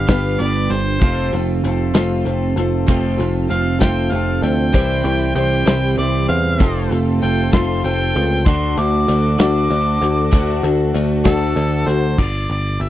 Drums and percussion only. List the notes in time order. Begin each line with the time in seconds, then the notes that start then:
0.08 kick, snare, closed hi-hat
0.40 closed hi-hat
0.70 closed hi-hat
1.01 kick, closed hi-hat
1.33 closed hi-hat
1.64 closed hi-hat
1.95 snare, closed hi-hat
2.26 closed hi-hat
2.57 closed hi-hat
2.88 kick, closed hi-hat
3.20 closed hi-hat
3.51 closed hi-hat
3.81 kick, snare, closed hi-hat
4.12 closed hi-hat
4.43 closed hi-hat
4.74 kick, closed hi-hat
5.05 closed hi-hat
5.36 closed hi-hat
5.67 snare, closed hi-hat
5.99 closed hi-hat
6.30 closed hi-hat
6.60 kick, closed hi-hat
6.92 closed hi-hat
7.23 closed hi-hat
7.53 kick, snare, closed hi-hat
7.84 closed hi-hat
8.15 closed hi-hat
8.46 kick, closed hi-hat
8.77 closed hi-hat
9.09 closed hi-hat
9.39 snare, closed hi-hat
9.71 closed hi-hat
10.02 closed hi-hat
10.33 kick, closed hi-hat
10.64 closed hi-hat
10.95 closed hi-hat
11.25 kick, snare, closed hi-hat
11.57 closed hi-hat
11.88 closed hi-hat
12.18 kick, crash
12.49 closed hi-hat
12.81 closed hi-hat